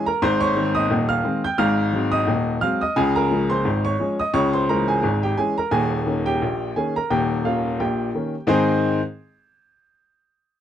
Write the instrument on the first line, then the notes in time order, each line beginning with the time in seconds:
upright piano
0.06 A#4 A#5
0.22 G#1 G#2 C5 C6
0.40 C#5 C#6
0.56 D#3 G#3 C4
0.75 D#5 D#6
0.90 D#1 D#2
1.09 F5 F6
1.24 D#3 G#3 C4
1.44 G5 G6
1.58 G#1 G#2 F5 F6
1.93 F#3 G#3 C4
2.12 D#5 D#6
2.27 D#1 D#2
2.61 F#3 G#3 C4 F5 F6
2.81 D#5 D#6
2.96 C#2 C#3 G#4 G#5
3.16 A#4 A#5
3.31 F3 G#3 C#4
3.50 C5 C6
3.65 G#1 G#2
3.85 C#5 C#6
3.99 F3 G#3 C#4
4.20 D#5 D#6
4.34 C#2 C#3 C#5 C#6
4.53 C5 C6
4.69 E3 G#3 C#4 A#4 A#5
4.88 G#4 G#5
5.03 G#1 G#2
5.23 G4 G5
5.37 E3 G#3 C#4 G#4 G#5
5.58 A#4 A#5
5.71 D#1 D#2 G#4 G#5
6.06 D#3 A#3 C#4
6.26 G4 G5
6.42 A#1 A#2
6.76 D#3 A#3 C#4 G#4 G#5
6.96 A#4 A#5
7.10 D#1 D#2 G4 G5
7.45 D#3 A#3 C#4 F4 F5
7.80 A#1 A#2 G4 G5
8.15 D#3 A#3 C#4
8.47 G#2 D#3 C4 D#4 G#4 C5 G#5